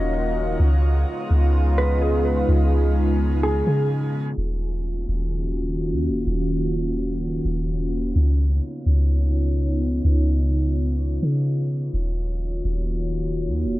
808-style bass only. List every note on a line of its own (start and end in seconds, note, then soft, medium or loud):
0.00 0.57 D#1 loud
0.59 1.05 C#2 loud
1.30 2.44 C#2 loud
2.48 3.63 C#2 loud
3.67 4.35 C#3 loud
4.37 5.05 D#1 loud
5.08 5.93 D#1 loud
5.91 6.10 D#2 loud
6.09 6.26 D#1 medium
6.26 7.41 D#1 loud
7.45 8.13 D#1 loud
8.15 8.61 C#2 loud
8.86 10.00 C#2 loud
10.04 11.18 C#2 loud
11.22 11.91 C#3 loud
11.93 12.61 D#1 loud
12.64 13.48 D#1 loud
13.47 13.66 D#2 loud
13.65 13.80 D#1 loud